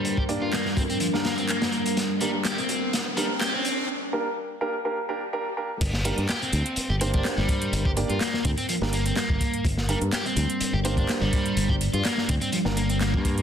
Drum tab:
CC |----------------|----------------|----------------|x---------------|
HH |x-x-x-xxx-xxxxxx|x-x-xxx-x-x-x-x-|----------------|x-xxxxxxx-xxx-xx|
CP |----x-------x---|----x-------x---|----------------|----x-------x---|
SD |----oo---oo--o--|o---o---o---o---|----------------|-o--o-------oo--|
BD |-o----o---------|----------------|----------------|o----------o--o-|

CC |----------------|----------------|----------------|
HH |x-xxx-xxx-xxx-xx|x-xxxxxxx-xxx-xx|x-xxx-xxx-xxx-xx|
CP |----x-------x---|----x-------x---|----x-------x---|
SD |----oo---o--o---|-o--o-------oo--|----oo---o--o---|
BD |-o----o------oo-|o----------o--o-|-o----o------oo-|